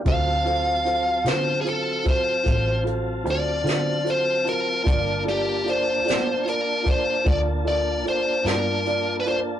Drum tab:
HH |xxxxxxxxxxxx|xxxxxxxxxxxx|
SD |---o-----o--|---o-----o--|
BD |o----oo-----|o----oo-----|